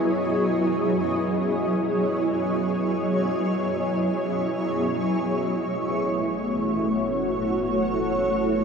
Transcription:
Already playing: F#3 B3 E4 G#4 C#5 D#5
4.97 F#1 A3
5.28 F#4
7.77 E5

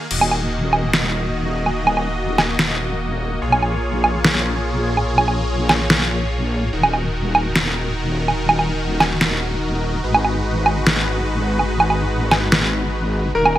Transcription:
0.11 D#1 D#3 A#3 F#4 D#5, crash
0.21 low woodblock
0.31 low woodblock
0.73 low woodblock
0.93 snare
1.66 low woodblock
1.87 low woodblock
1.97 low woodblock
2.38 snare, low woodblock
2.59 snare
3.42 A#1 F4 G#4 C#5
3.52 low woodblock
3.62 low woodblock
4.04 low woodblock
4.25 snare
4.97 low woodblock
5.18 low woodblock
5.28 low woodblock
5.69 snare, low woodblock
5.90 snare
6.73 D#1 D#3 D#4 F#4 A#4
6.83 low woodblock
6.93 low woodblock
7.35 low woodblock
7.56 snare
8.28 low woodblock
8.49 low woodblock
8.59 low woodblock
9.00 snare, low woodblock
9.21 snare
10.04 G#1 G#3 B4
10.14 low woodblock
10.25 low woodblock
10.66 low woodblock
10.87 snare
11.59 low woodblock
11.80 low woodblock
11.90 low woodblock
12.31 snare, low woodblock
12.52 snare
13.35 D#1 D#3 D#4 F#4 A#4
13.45 low woodblock

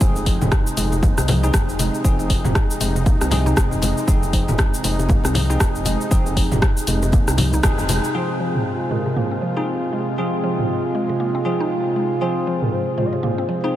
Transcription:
Already playing: G#3
0.01 F1 C3 F3 C4 D#4 G#4, kick, shaker
0.16 muted conga, shaker
0.26 F3, kick, open hi-hat, shaker
0.41 F1, mid tom, low conga, shaker
0.52 kick, cross-stick, shaker
0.67 shaker
0.77 F1 G#3, open hi-hat, high conga, shaker
0.92 C3, muted conga, shaker
1.03 A#3, kick, low conga, shaker
1.18 C2 C4, cross-stick, high conga, shaker
1.28 F3, open hi-hat, muted conga, high conga, low conga, shaker
1.43 C4 D#4 G#4, shaker
1.53 F1, kick, cross-stick, low conga, shaker
1.69 shaker
1.79 G#3, open hi-hat, muted conga, high conga, shaker
1.94 shaker
2.04 F1 F3 C4 D#4 G#4, kick, shaker
2.19 muted conga, shaker
2.30 F3, kick, open hi-hat, shaker
2.44 F1, mid tom, low conga, shaker
2.55 kick, cross-stick, shaker
2.70 shaker
2.80 F1 G#3, open hi-hat, high conga, shaker
2.96 C3, muted conga, shaker
3.06 A#3, kick, high conga, shaker
3.21 C2 C4, cross-stick, shaker
3.31 F3 C4 D#4 G#4, open hi-hat, muted conga, high conga, low conga, shaker
3.46 D#4, high conga, shaker
3.56 F1, kick, cross-stick, low conga, shaker
3.71 low conga, shaker
3.82 G#3, open hi-hat, muted conga, high conga, shaker
3.97 shaker
4.07 F1 F3 C4 D#4 G#4, kick, shaker
4.23 muted conga, shaker
4.33 F3, kick, open hi-hat, shaker
4.48 F1, mid tom, low conga, shaker
4.58 kick, cross-stick, muted conga, shaker
4.74 shaker
4.84 F1 G#3, open hi-hat, high conga, shaker
4.99 C3, muted conga, shaker
5.09 A#3, kick, low conga, shaker
5.24 C2 C4, cross-stick, high conga, shaker
5.34 F3, open hi-hat, muted conga, high conga, low conga, shaker
5.50 C4 D#4 G#4, shaker
5.60 F1, kick, cross-stick, low conga, shaker
5.75 shaker
5.85 G#3, open hi-hat, muted conga, high conga, shaker
6.01 shaker
6.11 F1 F3 C4 D#4 G#4, kick, shaker
6.26 muted conga, shaker
6.37 F3, kick, open hi-hat, shaker
6.51 F1, mid tom, low conga, shaker
6.62 kick, cross-stick, muted conga, shaker
6.77 shaker
6.87 F1 G#3, open hi-hat, high conga, shaker
7.02 C3, muted conga, shaker
7.12 A#3, kick, high conga, shaker
7.28 C2 C4, cross-stick, shaker
7.38 F3, open hi-hat, muted conga, high conga, low conga, shaker
7.53 D#4, high conga, shaker
7.63 F1 C4 D#4 G#4, kick, cross-stick, low conga, shaker
7.78 low conga, shaker
7.89 G#3, open hi-hat, muted conga, high conga, shaker
8.04 shaker
8.14 C3 F3 G#3 C4 F4 G#4 C5, shaker
8.40 F3, open hi-hat, shaker
8.55 mid tom, shaker
8.65 shaker
8.91 G#3 A#4, mid tom, open hi-hat, shaker
9.06 C3, shaker
9.16 A#3 C5, mid tom, shaker
9.31 C4
9.42 F3, open hi-hat, shaker
9.57 C4 D#4 F4 G#4
9.67 shaker
9.93 G#3, open hi-hat, shaker
10.08 shaker
10.18 F3 C4 F4 G#4, shaker
10.44 F3, open hi-hat, shaker
10.59 mid tom, shaker
10.69 shaker
10.94 G#3, open hi-hat, shaker
11.09 C3, shaker
11.20 A#3, shaker
11.35 C4
11.45 F3 C4 F4 G#4, open hi-hat, shaker
11.60 D#4, shaker
11.71 shaker
11.96 G#3, open hi-hat, shaker
12.11 shaker
12.21 F3 C4 F4 G#4 C5
12.47 F3, open hi-hat, shaker
12.62 A#4, mid tom, shaker
12.72 C5, shaker
12.97 G#3 C5, mid tom, open hi-hat, shaker
13.05 D#5
13.13 C3 C5, shaker
13.23 A#3, mid tom
13.38 C4
13.49 F3, open hi-hat, shaker
13.64 C4 D#4 F4 G#4

